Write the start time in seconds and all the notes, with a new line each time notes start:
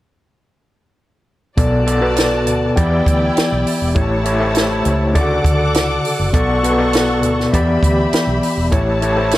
1.57 B1 B2 B3 F#4 A4 D5 A5, kick, closed hi-hat
1.86 B2 B3 A4 D5, closed hi-hat
2.01 B2 B3 A4 B4
2.16 snare, closed hi-hat
2.47 D2, closed hi-hat
2.76 E2 E3 B3 E4 G4 D5 G5, kick, closed hi-hat
3.06 D2, kick, closed hi-hat
3.37 muted fingered electric bass stroke, snare, closed hi-hat
3.52 B1
3.67 open hi-hat
3.82 E1
3.95 A1 A3 E4 G4 C#5 A5, kick, closed hi-hat
4.25 A3 E4 G4 C#5, closed hi-hat
4.39 A3 E4 G4 C5
4.47 C#5
4.55 snare, closed hi-hat
4.85 C#2, closed hi-hat
5.14 D2 C#3 D3 E4 A4 D5 F#5 D6, kick, closed hi-hat
5.21 F#4
5.44 D2, kick, closed hi-hat
5.74 C#2, snare, closed hi-hat
6.05 open hi-hat
6.19 F#1
6.33 B1 B2 B3 A4 D5 F#5 C#6, kick, closed hi-hat
6.63 B2 B3 A4 B4, closed hi-hat
6.77 B2 B3 A4 D5
6.93 snare, closed hi-hat
7.23 D2, closed hi-hat
7.40 snare
7.53 E2 E3 B3 G4 D5 E5 B5, kick, closed hi-hat
7.83 D2, kick, closed hi-hat
8.13 muted fingered electric bass stroke, snare, closed hi-hat
8.27 B1
8.43 open hi-hat
8.57 E1
8.71 A1 A3 E4 G4 C#5 A5, kick, closed hi-hat
9.01 A3 E4 G4 C#5, closed hi-hat
9.16 A3 E4 G4 C5
9.24 C#5
9.31 snare, closed hi-hat